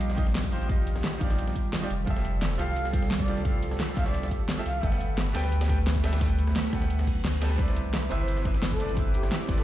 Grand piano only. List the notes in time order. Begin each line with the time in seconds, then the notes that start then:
Already playing: D#3 D#4 F4 G4 D#5
0.16 D#3 D#4 F4 G4 D#5
0.50 D#3 D#4 F4 G4 C5
0.66 D#3 D#4 F4
0.70 G4 D#5
1.18 D#3 D#4 F4
1.22 G4 D5
1.81 D#3 D#4 F4 G4 D5
2.05 F3 F4 G4
2.09 A4 E5
2.57 F3 F4 G4 A4 F5
2.92 F3 F4 G4 A4 F5
3.27 F3 F4 G4 A4 D5
3.43 F3 F4 G4
3.47 A4 F5
3.94 F3 F4 G4
3.98 A4 E5
4.56 F3 F4 G4 A4 E5
4.80 G3 G4 A4
4.85 B4 F#5
5.33 G3 G4 A4 B4 G5
5.68 G3 G4 A4 B4 G5
6.03 G3 G4 A4 B4 E5
6.18 G3 G4 A4
6.23 B4 G5
6.70 G3 G4 A4
6.74 B4 F#5
7.41 G3 G4 A4 B4 A5
7.56 C3 C4 E4
7.61 B4 D5
8.09 C3 C4 E4 B4 E5
8.44 C3 C4 E4 B4 E5
8.78 C3 C4 E4 B4 D5
8.94 C3 C4 E4
8.98 B4 E5
9.46 C3 C4 E4
9.50 B4 D5